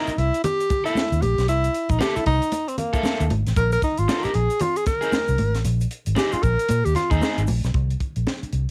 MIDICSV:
0, 0, Header, 1, 6, 480
1, 0, Start_track
1, 0, Tempo, 522193
1, 1362, Time_signature, 4, 2, 24, 8
1, 8004, End_track
2, 0, Start_track
2, 0, Title_t, "Tenor saxophone"
2, 0, Program_c, 0, 66
2, 0, Note_on_c, 0, 63, 86
2, 165, Note_on_c, 0, 64, 100
2, 179, Note_off_c, 0, 63, 0
2, 399, Note_off_c, 0, 64, 0
2, 405, Note_on_c, 0, 67, 110
2, 761, Note_off_c, 0, 67, 0
2, 786, Note_on_c, 0, 64, 93
2, 1120, Note_on_c, 0, 67, 98
2, 1134, Note_off_c, 0, 64, 0
2, 1361, Note_off_c, 0, 67, 0
2, 1367, Note_on_c, 0, 64, 101
2, 1751, Note_on_c, 0, 63, 92
2, 1765, Note_off_c, 0, 64, 0
2, 1843, Note_off_c, 0, 63, 0
2, 1849, Note_on_c, 0, 67, 97
2, 1989, Note_on_c, 0, 64, 91
2, 2003, Note_off_c, 0, 67, 0
2, 2078, Note_off_c, 0, 64, 0
2, 2084, Note_on_c, 0, 63, 109
2, 2466, Note_on_c, 0, 60, 76
2, 2480, Note_off_c, 0, 63, 0
2, 2552, Note_off_c, 0, 60, 0
2, 2557, Note_on_c, 0, 58, 78
2, 3003, Note_off_c, 0, 58, 0
2, 3280, Note_on_c, 0, 70, 106
2, 3412, Note_off_c, 0, 70, 0
2, 3424, Note_on_c, 0, 70, 113
2, 3511, Note_off_c, 0, 70, 0
2, 3526, Note_on_c, 0, 63, 99
2, 3667, Note_on_c, 0, 65, 99
2, 3681, Note_off_c, 0, 63, 0
2, 3898, Note_on_c, 0, 67, 90
2, 3912, Note_off_c, 0, 65, 0
2, 3995, Note_on_c, 0, 68, 101
2, 4009, Note_off_c, 0, 67, 0
2, 4242, Note_on_c, 0, 65, 101
2, 4256, Note_off_c, 0, 68, 0
2, 4384, Note_on_c, 0, 68, 90
2, 4397, Note_off_c, 0, 65, 0
2, 4473, Note_off_c, 0, 68, 0
2, 4479, Note_on_c, 0, 70, 97
2, 5159, Note_off_c, 0, 70, 0
2, 5674, Note_on_c, 0, 67, 87
2, 5817, Note_on_c, 0, 65, 87
2, 5831, Note_off_c, 0, 67, 0
2, 5910, Note_on_c, 0, 70, 123
2, 5924, Note_off_c, 0, 65, 0
2, 6295, Note_on_c, 0, 67, 96
2, 6308, Note_off_c, 0, 70, 0
2, 6390, Note_off_c, 0, 67, 0
2, 6395, Note_on_c, 0, 65, 98
2, 6536, Note_on_c, 0, 63, 84
2, 6550, Note_off_c, 0, 65, 0
2, 6779, Note_off_c, 0, 63, 0
2, 8004, End_track
3, 0, Start_track
3, 0, Title_t, "Overdriven electric guitar"
3, 0, Program_c, 1, 29
3, 775, Note_on_c, 1, 69, 79
3, 786, Note_on_c, 1, 64, 67
3, 792, Note_on_c, 1, 58, 64
3, 897, Note_off_c, 1, 69, 0
3, 903, Note_off_c, 1, 64, 0
3, 906, Note_off_c, 1, 58, 0
3, 1829, Note_on_c, 1, 58, 85
3, 1839, Note_on_c, 1, 64, 92
3, 1846, Note_on_c, 1, 69, 104
3, 1992, Note_off_c, 1, 58, 0
3, 1997, Note_off_c, 1, 64, 0
3, 2000, Note_off_c, 1, 69, 0
3, 2695, Note_on_c, 1, 69, 90
3, 2704, Note_on_c, 1, 64, 83
3, 2713, Note_on_c, 1, 58, 69
3, 2781, Note_off_c, 1, 58, 0
3, 2789, Note_off_c, 1, 64, 0
3, 2792, Note_on_c, 1, 58, 82
3, 2796, Note_off_c, 1, 69, 0
3, 2800, Note_on_c, 1, 64, 106
3, 2807, Note_on_c, 1, 69, 107
3, 2952, Note_off_c, 1, 58, 0
3, 2956, Note_off_c, 1, 64, 0
3, 2959, Note_off_c, 1, 69, 0
3, 3755, Note_on_c, 1, 60, 95
3, 3763, Note_on_c, 1, 63, 97
3, 3771, Note_on_c, 1, 70, 114
3, 3950, Note_off_c, 1, 60, 0
3, 3954, Note_off_c, 1, 63, 0
3, 3958, Note_off_c, 1, 70, 0
3, 4608, Note_on_c, 1, 68, 84
3, 4620, Note_on_c, 1, 63, 75
3, 4626, Note_on_c, 1, 60, 69
3, 4728, Note_off_c, 1, 68, 0
3, 4735, Note_off_c, 1, 63, 0
3, 4737, Note_off_c, 1, 60, 0
3, 5659, Note_on_c, 1, 60, 95
3, 5669, Note_on_c, 1, 63, 99
3, 5676, Note_on_c, 1, 68, 94
3, 5823, Note_off_c, 1, 60, 0
3, 5828, Note_off_c, 1, 63, 0
3, 5832, Note_off_c, 1, 68, 0
3, 6530, Note_on_c, 1, 68, 90
3, 6540, Note_on_c, 1, 63, 83
3, 6549, Note_on_c, 1, 60, 78
3, 6619, Note_off_c, 1, 60, 0
3, 6628, Note_off_c, 1, 63, 0
3, 6630, Note_on_c, 1, 60, 87
3, 6635, Note_off_c, 1, 68, 0
3, 6639, Note_on_c, 1, 63, 96
3, 6646, Note_on_c, 1, 68, 93
3, 6791, Note_off_c, 1, 60, 0
3, 6795, Note_off_c, 1, 63, 0
3, 6798, Note_off_c, 1, 68, 0
3, 8004, End_track
4, 0, Start_track
4, 0, Title_t, "Fingered electric bass"
4, 0, Program_c, 2, 33
4, 166, Note_on_c, 2, 36, 96
4, 272, Note_off_c, 2, 36, 0
4, 1030, Note_on_c, 2, 39, 86
4, 1100, Note_off_c, 2, 39, 0
4, 1126, Note_on_c, 2, 34, 83
4, 1232, Note_off_c, 2, 34, 0
4, 1270, Note_on_c, 2, 35, 97
4, 1363, Note_off_c, 2, 35, 0
4, 1363, Note_on_c, 2, 36, 105
4, 1540, Note_off_c, 2, 36, 0
4, 1746, Note_on_c, 2, 34, 71
4, 1817, Note_off_c, 2, 34, 0
4, 2085, Note_on_c, 2, 36, 100
4, 2190, Note_off_c, 2, 36, 0
4, 2944, Note_on_c, 2, 39, 80
4, 3014, Note_off_c, 2, 39, 0
4, 3040, Note_on_c, 2, 32, 83
4, 3146, Note_off_c, 2, 32, 0
4, 3189, Note_on_c, 2, 33, 93
4, 3257, Note_off_c, 2, 33, 0
4, 3280, Note_on_c, 2, 34, 101
4, 3456, Note_off_c, 2, 34, 0
4, 3665, Note_on_c, 2, 32, 73
4, 3734, Note_off_c, 2, 32, 0
4, 4000, Note_on_c, 2, 34, 99
4, 4105, Note_off_c, 2, 34, 0
4, 4861, Note_on_c, 2, 36, 89
4, 4931, Note_off_c, 2, 36, 0
4, 4956, Note_on_c, 2, 32, 79
4, 5100, Note_off_c, 2, 32, 0
4, 5100, Note_on_c, 2, 33, 97
4, 5170, Note_off_c, 2, 33, 0
4, 5193, Note_on_c, 2, 34, 111
4, 5371, Note_off_c, 2, 34, 0
4, 5579, Note_on_c, 2, 32, 81
4, 5649, Note_off_c, 2, 32, 0
4, 5917, Note_on_c, 2, 34, 95
4, 6023, Note_off_c, 2, 34, 0
4, 6156, Note_on_c, 2, 46, 116
4, 6263, Note_off_c, 2, 46, 0
4, 6302, Note_on_c, 2, 39, 90
4, 6372, Note_off_c, 2, 39, 0
4, 6538, Note_on_c, 2, 39, 97
4, 6610, Note_off_c, 2, 39, 0
4, 6782, Note_on_c, 2, 32, 83
4, 6853, Note_off_c, 2, 32, 0
4, 6883, Note_on_c, 2, 34, 89
4, 6988, Note_off_c, 2, 34, 0
4, 7025, Note_on_c, 2, 35, 97
4, 7095, Note_off_c, 2, 35, 0
4, 7119, Note_on_c, 2, 36, 85
4, 7298, Note_off_c, 2, 36, 0
4, 7506, Note_on_c, 2, 34, 66
4, 7577, Note_off_c, 2, 34, 0
4, 7840, Note_on_c, 2, 36, 80
4, 7949, Note_off_c, 2, 36, 0
4, 8004, End_track
5, 0, Start_track
5, 0, Title_t, "Muted fingered electric bass strokes"
5, 70, Note_on_c, 9, 29, 44
5, 162, Note_off_c, 9, 29, 0
5, 1989, Note_on_c, 9, 29, 47
5, 2080, Note_off_c, 9, 29, 0
5, 3905, Note_on_c, 9, 29, 50
5, 3997, Note_off_c, 9, 29, 0
5, 5821, Note_on_c, 9, 29, 43
5, 5913, Note_off_c, 9, 29, 0
5, 7748, Note_on_c, 9, 29, 35
5, 7840, Note_off_c, 9, 29, 0
5, 8004, End_track
6, 0, Start_track
6, 0, Title_t, "Drums"
6, 64, Note_on_c, 9, 82, 52
6, 82, Note_on_c, 9, 42, 53
6, 156, Note_off_c, 9, 82, 0
6, 168, Note_off_c, 9, 42, 0
6, 168, Note_on_c, 9, 42, 70
6, 260, Note_off_c, 9, 42, 0
6, 315, Note_on_c, 9, 42, 54
6, 316, Note_on_c, 9, 82, 49
6, 403, Note_off_c, 9, 42, 0
6, 403, Note_on_c, 9, 42, 96
6, 406, Note_on_c, 9, 62, 58
6, 406, Note_on_c, 9, 64, 94
6, 408, Note_off_c, 9, 82, 0
6, 415, Note_on_c, 9, 82, 78
6, 495, Note_off_c, 9, 42, 0
6, 498, Note_off_c, 9, 62, 0
6, 498, Note_off_c, 9, 64, 0
6, 507, Note_off_c, 9, 82, 0
6, 554, Note_on_c, 9, 82, 52
6, 556, Note_on_c, 9, 42, 53
6, 644, Note_off_c, 9, 42, 0
6, 644, Note_on_c, 9, 42, 73
6, 644, Note_on_c, 9, 62, 50
6, 646, Note_off_c, 9, 82, 0
6, 646, Note_on_c, 9, 36, 100
6, 648, Note_on_c, 9, 82, 55
6, 735, Note_off_c, 9, 62, 0
6, 736, Note_off_c, 9, 42, 0
6, 738, Note_off_c, 9, 36, 0
6, 739, Note_off_c, 9, 82, 0
6, 790, Note_on_c, 9, 82, 53
6, 792, Note_on_c, 9, 42, 51
6, 875, Note_on_c, 9, 63, 78
6, 882, Note_off_c, 9, 82, 0
6, 884, Note_off_c, 9, 42, 0
6, 888, Note_on_c, 9, 82, 76
6, 896, Note_on_c, 9, 38, 123
6, 967, Note_off_c, 9, 63, 0
6, 980, Note_off_c, 9, 82, 0
6, 988, Note_off_c, 9, 38, 0
6, 1032, Note_on_c, 9, 42, 43
6, 1034, Note_on_c, 9, 82, 54
6, 1122, Note_on_c, 9, 63, 86
6, 1124, Note_off_c, 9, 42, 0
6, 1126, Note_off_c, 9, 82, 0
6, 1126, Note_on_c, 9, 42, 69
6, 1214, Note_off_c, 9, 63, 0
6, 1218, Note_off_c, 9, 42, 0
6, 1271, Note_on_c, 9, 42, 51
6, 1275, Note_on_c, 9, 38, 35
6, 1278, Note_on_c, 9, 82, 48
6, 1363, Note_off_c, 9, 42, 0
6, 1363, Note_on_c, 9, 42, 79
6, 1364, Note_on_c, 9, 62, 29
6, 1365, Note_off_c, 9, 82, 0
6, 1365, Note_on_c, 9, 82, 82
6, 1367, Note_off_c, 9, 38, 0
6, 1454, Note_off_c, 9, 42, 0
6, 1456, Note_off_c, 9, 62, 0
6, 1457, Note_off_c, 9, 82, 0
6, 1508, Note_on_c, 9, 42, 49
6, 1509, Note_on_c, 9, 82, 56
6, 1600, Note_off_c, 9, 42, 0
6, 1601, Note_off_c, 9, 82, 0
6, 1603, Note_on_c, 9, 42, 67
6, 1605, Note_on_c, 9, 82, 52
6, 1695, Note_off_c, 9, 42, 0
6, 1697, Note_off_c, 9, 82, 0
6, 1738, Note_on_c, 9, 42, 54
6, 1743, Note_on_c, 9, 36, 97
6, 1753, Note_on_c, 9, 82, 60
6, 1830, Note_off_c, 9, 42, 0
6, 1834, Note_off_c, 9, 36, 0
6, 1844, Note_on_c, 9, 38, 115
6, 1844, Note_on_c, 9, 63, 79
6, 1845, Note_off_c, 9, 82, 0
6, 1851, Note_on_c, 9, 82, 74
6, 1936, Note_off_c, 9, 38, 0
6, 1936, Note_off_c, 9, 63, 0
6, 1943, Note_off_c, 9, 82, 0
6, 1984, Note_on_c, 9, 82, 53
6, 1993, Note_on_c, 9, 42, 49
6, 2076, Note_off_c, 9, 82, 0
6, 2077, Note_off_c, 9, 42, 0
6, 2077, Note_on_c, 9, 42, 78
6, 2081, Note_on_c, 9, 36, 84
6, 2169, Note_off_c, 9, 42, 0
6, 2173, Note_off_c, 9, 36, 0
6, 2224, Note_on_c, 9, 42, 57
6, 2230, Note_on_c, 9, 82, 54
6, 2315, Note_off_c, 9, 42, 0
6, 2315, Note_on_c, 9, 42, 93
6, 2318, Note_on_c, 9, 62, 60
6, 2322, Note_off_c, 9, 82, 0
6, 2325, Note_on_c, 9, 82, 81
6, 2406, Note_off_c, 9, 42, 0
6, 2409, Note_off_c, 9, 62, 0
6, 2417, Note_off_c, 9, 82, 0
6, 2466, Note_on_c, 9, 42, 55
6, 2472, Note_on_c, 9, 82, 50
6, 2554, Note_on_c, 9, 62, 48
6, 2554, Note_on_c, 9, 64, 61
6, 2557, Note_off_c, 9, 42, 0
6, 2557, Note_on_c, 9, 42, 68
6, 2562, Note_off_c, 9, 82, 0
6, 2562, Note_on_c, 9, 82, 53
6, 2646, Note_off_c, 9, 62, 0
6, 2646, Note_off_c, 9, 64, 0
6, 2649, Note_off_c, 9, 42, 0
6, 2654, Note_off_c, 9, 82, 0
6, 2698, Note_on_c, 9, 36, 83
6, 2704, Note_on_c, 9, 82, 52
6, 2705, Note_on_c, 9, 42, 49
6, 2788, Note_on_c, 9, 63, 78
6, 2790, Note_off_c, 9, 36, 0
6, 2795, Note_off_c, 9, 82, 0
6, 2797, Note_off_c, 9, 42, 0
6, 2800, Note_on_c, 9, 82, 84
6, 2809, Note_on_c, 9, 38, 119
6, 2880, Note_off_c, 9, 63, 0
6, 2891, Note_off_c, 9, 82, 0
6, 2901, Note_off_c, 9, 38, 0
6, 2945, Note_on_c, 9, 42, 47
6, 2946, Note_on_c, 9, 82, 58
6, 3036, Note_off_c, 9, 42, 0
6, 3036, Note_on_c, 9, 42, 71
6, 3037, Note_on_c, 9, 63, 82
6, 3038, Note_off_c, 9, 82, 0
6, 3128, Note_off_c, 9, 42, 0
6, 3129, Note_off_c, 9, 63, 0
6, 3186, Note_on_c, 9, 42, 57
6, 3190, Note_on_c, 9, 38, 33
6, 3193, Note_on_c, 9, 82, 54
6, 3276, Note_off_c, 9, 82, 0
6, 3276, Note_on_c, 9, 82, 70
6, 3277, Note_off_c, 9, 42, 0
6, 3277, Note_on_c, 9, 36, 115
6, 3277, Note_on_c, 9, 42, 78
6, 3278, Note_on_c, 9, 62, 31
6, 3282, Note_off_c, 9, 38, 0
6, 3368, Note_off_c, 9, 82, 0
6, 3369, Note_off_c, 9, 36, 0
6, 3369, Note_off_c, 9, 42, 0
6, 3369, Note_off_c, 9, 62, 0
6, 3418, Note_on_c, 9, 82, 55
6, 3423, Note_on_c, 9, 42, 50
6, 3510, Note_off_c, 9, 82, 0
6, 3514, Note_off_c, 9, 42, 0
6, 3514, Note_on_c, 9, 36, 84
6, 3514, Note_on_c, 9, 42, 73
6, 3516, Note_on_c, 9, 82, 52
6, 3606, Note_off_c, 9, 36, 0
6, 3606, Note_off_c, 9, 42, 0
6, 3608, Note_off_c, 9, 82, 0
6, 3654, Note_on_c, 9, 42, 56
6, 3657, Note_on_c, 9, 82, 54
6, 3746, Note_off_c, 9, 42, 0
6, 3749, Note_off_c, 9, 82, 0
6, 3758, Note_on_c, 9, 82, 80
6, 3760, Note_on_c, 9, 63, 78
6, 3761, Note_on_c, 9, 38, 115
6, 3850, Note_off_c, 9, 82, 0
6, 3852, Note_off_c, 9, 63, 0
6, 3853, Note_off_c, 9, 38, 0
6, 3889, Note_on_c, 9, 82, 51
6, 3908, Note_on_c, 9, 42, 48
6, 3981, Note_off_c, 9, 82, 0
6, 3990, Note_off_c, 9, 42, 0
6, 3990, Note_on_c, 9, 42, 74
6, 4082, Note_off_c, 9, 42, 0
6, 4137, Note_on_c, 9, 42, 51
6, 4139, Note_on_c, 9, 82, 54
6, 4225, Note_off_c, 9, 42, 0
6, 4225, Note_on_c, 9, 42, 91
6, 4231, Note_off_c, 9, 82, 0
6, 4235, Note_on_c, 9, 62, 60
6, 4235, Note_on_c, 9, 64, 88
6, 4236, Note_on_c, 9, 82, 78
6, 4316, Note_off_c, 9, 42, 0
6, 4326, Note_off_c, 9, 62, 0
6, 4326, Note_off_c, 9, 64, 0
6, 4328, Note_off_c, 9, 82, 0
6, 4378, Note_on_c, 9, 42, 56
6, 4378, Note_on_c, 9, 82, 57
6, 4468, Note_off_c, 9, 42, 0
6, 4468, Note_on_c, 9, 42, 81
6, 4470, Note_off_c, 9, 82, 0
6, 4472, Note_on_c, 9, 82, 64
6, 4473, Note_on_c, 9, 36, 103
6, 4473, Note_on_c, 9, 62, 44
6, 4475, Note_on_c, 9, 38, 35
6, 4560, Note_off_c, 9, 42, 0
6, 4564, Note_off_c, 9, 82, 0
6, 4565, Note_off_c, 9, 36, 0
6, 4565, Note_off_c, 9, 62, 0
6, 4566, Note_off_c, 9, 38, 0
6, 4615, Note_on_c, 9, 82, 56
6, 4616, Note_on_c, 9, 42, 52
6, 4707, Note_off_c, 9, 82, 0
6, 4708, Note_off_c, 9, 42, 0
6, 4709, Note_on_c, 9, 63, 80
6, 4711, Note_on_c, 9, 82, 81
6, 4720, Note_on_c, 9, 38, 121
6, 4801, Note_off_c, 9, 63, 0
6, 4803, Note_off_c, 9, 82, 0
6, 4812, Note_off_c, 9, 38, 0
6, 4854, Note_on_c, 9, 82, 58
6, 4857, Note_on_c, 9, 42, 50
6, 4945, Note_off_c, 9, 82, 0
6, 4947, Note_off_c, 9, 42, 0
6, 4947, Note_on_c, 9, 42, 66
6, 4951, Note_on_c, 9, 63, 76
6, 5039, Note_off_c, 9, 42, 0
6, 5043, Note_off_c, 9, 63, 0
6, 5098, Note_on_c, 9, 42, 53
6, 5101, Note_on_c, 9, 82, 53
6, 5102, Note_on_c, 9, 38, 37
6, 5188, Note_on_c, 9, 62, 28
6, 5190, Note_off_c, 9, 42, 0
6, 5190, Note_on_c, 9, 42, 84
6, 5191, Note_off_c, 9, 82, 0
6, 5191, Note_on_c, 9, 82, 74
6, 5194, Note_off_c, 9, 38, 0
6, 5280, Note_off_c, 9, 62, 0
6, 5282, Note_off_c, 9, 42, 0
6, 5283, Note_off_c, 9, 82, 0
6, 5336, Note_on_c, 9, 82, 52
6, 5341, Note_on_c, 9, 42, 52
6, 5428, Note_off_c, 9, 82, 0
6, 5431, Note_off_c, 9, 42, 0
6, 5431, Note_on_c, 9, 42, 79
6, 5433, Note_on_c, 9, 82, 57
6, 5523, Note_off_c, 9, 42, 0
6, 5525, Note_off_c, 9, 82, 0
6, 5571, Note_on_c, 9, 42, 61
6, 5573, Note_on_c, 9, 82, 58
6, 5663, Note_off_c, 9, 42, 0
6, 5665, Note_off_c, 9, 82, 0
6, 5667, Note_on_c, 9, 63, 75
6, 5678, Note_on_c, 9, 38, 107
6, 5680, Note_on_c, 9, 82, 83
6, 5759, Note_off_c, 9, 63, 0
6, 5769, Note_off_c, 9, 38, 0
6, 5772, Note_off_c, 9, 82, 0
6, 5810, Note_on_c, 9, 82, 55
6, 5823, Note_on_c, 9, 42, 47
6, 5902, Note_off_c, 9, 82, 0
6, 5909, Note_off_c, 9, 42, 0
6, 5909, Note_on_c, 9, 42, 80
6, 5914, Note_on_c, 9, 36, 85
6, 5920, Note_on_c, 9, 82, 53
6, 6001, Note_off_c, 9, 42, 0
6, 6006, Note_off_c, 9, 36, 0
6, 6012, Note_off_c, 9, 82, 0
6, 6060, Note_on_c, 9, 42, 62
6, 6065, Note_on_c, 9, 82, 50
6, 6144, Note_off_c, 9, 42, 0
6, 6144, Note_on_c, 9, 42, 93
6, 6149, Note_on_c, 9, 62, 58
6, 6157, Note_off_c, 9, 82, 0
6, 6162, Note_on_c, 9, 82, 84
6, 6236, Note_off_c, 9, 42, 0
6, 6241, Note_off_c, 9, 62, 0
6, 6254, Note_off_c, 9, 82, 0
6, 6301, Note_on_c, 9, 42, 54
6, 6308, Note_on_c, 9, 82, 54
6, 6387, Note_on_c, 9, 62, 50
6, 6387, Note_on_c, 9, 64, 73
6, 6393, Note_off_c, 9, 42, 0
6, 6393, Note_on_c, 9, 42, 76
6, 6400, Note_off_c, 9, 82, 0
6, 6400, Note_on_c, 9, 38, 34
6, 6400, Note_on_c, 9, 82, 55
6, 6479, Note_off_c, 9, 62, 0
6, 6479, Note_off_c, 9, 64, 0
6, 6485, Note_off_c, 9, 42, 0
6, 6492, Note_off_c, 9, 38, 0
6, 6492, Note_off_c, 9, 82, 0
6, 6534, Note_on_c, 9, 36, 87
6, 6538, Note_on_c, 9, 42, 52
6, 6543, Note_on_c, 9, 82, 60
6, 6626, Note_off_c, 9, 36, 0
6, 6629, Note_on_c, 9, 63, 81
6, 6630, Note_off_c, 9, 42, 0
6, 6635, Note_off_c, 9, 82, 0
6, 6636, Note_on_c, 9, 82, 81
6, 6647, Note_on_c, 9, 38, 121
6, 6721, Note_off_c, 9, 63, 0
6, 6728, Note_off_c, 9, 82, 0
6, 6739, Note_off_c, 9, 38, 0
6, 6782, Note_on_c, 9, 42, 55
6, 6783, Note_on_c, 9, 82, 54
6, 6864, Note_off_c, 9, 82, 0
6, 6864, Note_on_c, 9, 82, 66
6, 6874, Note_off_c, 9, 42, 0
6, 6875, Note_on_c, 9, 63, 80
6, 6876, Note_on_c, 9, 46, 69
6, 6956, Note_off_c, 9, 82, 0
6, 6966, Note_off_c, 9, 63, 0
6, 6968, Note_off_c, 9, 46, 0
6, 7024, Note_on_c, 9, 42, 60
6, 7027, Note_on_c, 9, 82, 51
6, 7028, Note_on_c, 9, 38, 33
6, 7116, Note_off_c, 9, 42, 0
6, 7116, Note_on_c, 9, 42, 64
6, 7117, Note_on_c, 9, 36, 108
6, 7119, Note_off_c, 9, 82, 0
6, 7120, Note_off_c, 9, 38, 0
6, 7208, Note_off_c, 9, 36, 0
6, 7208, Note_off_c, 9, 42, 0
6, 7265, Note_on_c, 9, 42, 43
6, 7356, Note_off_c, 9, 42, 0
6, 7356, Note_on_c, 9, 42, 61
6, 7357, Note_on_c, 9, 36, 70
6, 7448, Note_off_c, 9, 42, 0
6, 7449, Note_off_c, 9, 36, 0
6, 7499, Note_on_c, 9, 42, 48
6, 7591, Note_off_c, 9, 42, 0
6, 7599, Note_on_c, 9, 63, 65
6, 7604, Note_on_c, 9, 38, 98
6, 7691, Note_off_c, 9, 63, 0
6, 7695, Note_off_c, 9, 38, 0
6, 7749, Note_on_c, 9, 42, 43
6, 7837, Note_off_c, 9, 42, 0
6, 7837, Note_on_c, 9, 42, 62
6, 7929, Note_off_c, 9, 42, 0
6, 8004, End_track
0, 0, End_of_file